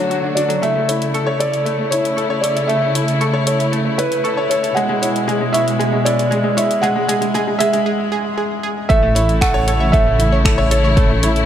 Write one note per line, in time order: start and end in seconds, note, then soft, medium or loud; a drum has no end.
0.00 0.60 D2 medium
0.00 0.59 D3 medium
0.00 0.48 F#3 medium
0.00 0.58 A3 medium
0.00 0.62 A3 medium
0.00 0.23 D4 medium
0.00 0.10 F#4 medium
0.00 0.59 F#4 medium
0.00 0.65 A4 medium
0.00 0.38 C#5 loud
0.10 0.18 F#4 medium
0.10 closed hi-hat soft
0.23 0.35 D4 medium
0.23 0.29 D5 medium
0.35 0.49 D4 medium
0.35 0.44 F#4 medium
0.35 0.63 D5 medium
0.35 closed hi-hat medium
0.48 0.61 F#3 medium
0.48 0.55 A4 medium
0.48 closed hi-hat soft
0.62 4.74 A1 medium
0.62 4.72 C#3 medium
0.62 0.74 A3 medium
0.62 4.72 A3 medium
0.62 7.83 E4 medium
0.62 0.68 A4 medium
0.62 1.11 E5 medium
0.62 closed hi-hat soft
0.75 0.88 A3 medium
0.88 1.01 E4 medium
0.88 0.93 C#5 medium
0.88 closed hi-hat medium
1.02 closed hi-hat soft
1.14 1.22 A4 medium
1.14 1.19 C#6 medium
1.14 closed hi-hat soft
1.26 1.32 A4 medium
1.26 1.39 C#5 medium
1.40 1.47 A4 medium
1.40 1.43 C#5 medium
1.40 1.93 D5 loud
1.40 closed hi-hat medium
1.52 1.58 E5 medium
1.52 closed hi-hat soft
1.65 1.77 A3 medium
1.65 1.71 A4 medium
1.65 closed hi-hat soft
1.78 1.91 A3 medium
1.91 2.04 E4 medium
1.91 2.44 C#5 loud
1.91 1.97 C#5 medium
1.91 closed hi-hat medium
2.05 closed hi-hat soft
2.17 2.25 A4 medium
2.17 2.22 C#6 medium
2.17 closed hi-hat soft
2.30 2.35 A4 medium
2.30 2.43 C#5 medium
2.41 2.51 A4 medium
2.41 2.46 C#5 medium
2.41 2.69 D5 medium
2.41 closed hi-hat medium
2.56 2.61 E5 medium
2.56 closed hi-hat soft
2.67 2.80 A3 medium
2.67 2.74 A4 medium
2.67 3.16 E5 loud
2.67 closed hi-hat soft
2.82 2.94 A3 medium
2.95 3.07 E4 medium
2.95 3.00 C#5 medium
2.95 closed hi-hat medium
3.08 closed hi-hat soft
3.21 3.28 A4 medium
3.21 3.26 C#6 medium
3.21 closed hi-hat soft
3.33 3.39 A4 medium
3.33 3.46 C#5 medium
3.46 3.54 A4 medium
3.46 3.50 C#5 medium
3.46 4.00 C#5 medium
3.46 closed hi-hat medium
3.59 3.65 E5 medium
3.59 closed hi-hat soft
3.72 3.83 A3 medium
3.72 3.78 A4 medium
3.72 closed hi-hat soft
3.85 3.98 A3 medium
3.98 4.11 E4 medium
3.98 4.52 B4 loud
3.98 4.04 C#5 medium
3.98 closed hi-hat medium
4.12 closed hi-hat soft
4.24 4.32 A4 medium
4.24 4.29 C#6 medium
4.24 closed hi-hat soft
4.37 4.42 A4 medium
4.37 4.50 C#5 medium
4.49 4.58 A4 medium
4.49 4.76 C#5 medium
4.49 4.53 C#5 medium
4.49 closed hi-hat medium
4.63 4.68 E5 medium
4.63 closed hi-hat soft
4.75 7.87 E1 medium
4.75 7.83 B2 medium
4.75 7.83 G#3 medium
4.75 4.87 G#3 medium
4.75 4.81 G#4 medium
4.75 5.24 F#5 loud
4.75 closed hi-hat soft
4.89 5.01 G#3 medium
5.02 5.14 E4 medium
5.02 5.07 C#5 medium
5.02 closed hi-hat medium
5.16 closed hi-hat soft
5.28 5.39 G#3 medium
5.28 5.33 G#4 medium
5.28 closed hi-hat soft
5.41 5.53 G#3 medium
5.53 5.66 E4 medium
5.53 5.59 C#5 medium
5.53 6.07 E5 loud
5.53 closed hi-hat medium
5.68 closed hi-hat soft
5.79 5.91 G#3 medium
5.79 5.85 G#4 medium
5.79 closed hi-hat soft
5.92 6.05 G#3 medium
6.05 6.18 E4 medium
6.05 6.11 C#5 medium
6.05 6.59 D5 loud
6.05 closed hi-hat medium
6.19 closed hi-hat soft
6.31 6.42 G#3 medium
6.31 6.36 G#4 medium
6.31 closed hi-hat soft
6.44 6.56 G#3 medium
6.57 6.69 E4 medium
6.57 6.62 C#5 medium
6.57 6.84 E5 loud
6.57 closed hi-hat medium
6.71 closed hi-hat soft
6.82 6.94 G#3 medium
6.82 6.88 G#4 medium
6.82 7.30 F#5 loud
6.82 closed hi-hat soft
6.96 7.07 G#3 medium
7.08 7.20 G#3 medium
7.08 7.14 G#4 medium
7.08 closed hi-hat medium
7.21 7.32 G#3 medium
7.21 closed hi-hat soft
7.34 7.46 G#3 medium
7.34 7.40 G#4 medium
7.34 closed hi-hat soft
7.47 7.59 G#3 medium
7.59 7.71 G#3 medium
7.59 7.66 G#4 medium
7.59 7.86 E5 loud
7.59 closed hi-hat medium
7.73 7.84 G#3 medium
7.73 closed hi-hat soft
7.86 7.91 G#4 medium
8.12 8.17 G#4 medium
8.38 8.43 G#4 medium
8.63 8.69 G#4 medium
8.89 11.46 A1 medium
8.89 11.46 C#3 medium
8.89 9.01 A3 medium
8.89 11.46 A3 medium
8.89 11.46 E4 medium
8.89 8.95 A4 medium
8.89 9.43 E5 loud
8.89 kick medium
8.89 closed hi-hat soft
9.02 9.15 A3 medium
9.15 9.28 E4 medium
9.15 9.21 C#5 medium
9.15 closed hi-hat medium
9.29 closed hi-hat soft
9.41 9.49 A4 medium
9.41 9.95 F#5 loud
9.41 9.47 C#6 medium
9.41 finger snap loud
9.41 kick loud
9.41 closed hi-hat soft
9.54 9.59 A4 medium
9.54 9.67 C#5 loud
9.67 9.75 A4 medium
9.67 9.71 C#5 medium
9.67 closed hi-hat medium
9.80 9.86 E5 medium
9.92 10.05 A3 medium
9.92 9.98 A4 medium
9.92 10.73 E5 loud
9.92 kick loud
9.92 closed hi-hat soft
10.06 10.19 A3 medium
10.19 10.32 E4 medium
10.19 closed hi-hat medium
10.32 10.37 C#5 medium
10.45 10.52 A4 medium
10.45 finger snap medium
10.45 kick loud
10.45 closed hi-hat soft
10.58 10.70 C#5 loud
10.58 10.63 E5 medium
10.71 10.78 A4 medium
10.71 10.79 A4 medium
10.71 11.46 C#5 medium
10.71 closed hi-hat medium
10.84 10.89 C#5 medium
10.97 11.08 A3 medium
10.97 11.02 A4 medium
10.97 kick loud
10.97 closed hi-hat soft
11.10 11.22 A3 medium
11.23 11.35 E4 medium
11.23 11.28 C#5 medium
11.23 closed hi-hat medium
11.36 closed hi-hat soft